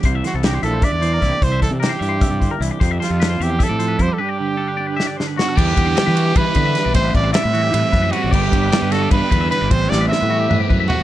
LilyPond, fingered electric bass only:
\new Staff \with { instrumentName = "Fingered electric bass" } { \clef bass \time 7/8 \key g \major \tempo 4 = 152 c,8 r16 c,8. bes,,8 r16 e,8. c,16 r16 | c,8. c8 r16 g,8. g,8 r16 c,16 r16 | f,8 r16 f,8. e,8 r16 a,8. f,16 r16 | r2. r8 |
e,8 e,8 r16 e8. e16 r16 d8 r16 b,,16 | a,,8 a,,8 r16 a,8. a,16 r16 fis,8 r16 a,,16 | g,,8 g,,8 r16 g,8. g,16 r16 e,8 r16 g,,16 | a,,8 a,,8 r16 a,8. a,16 r16 fis,8 r8 | }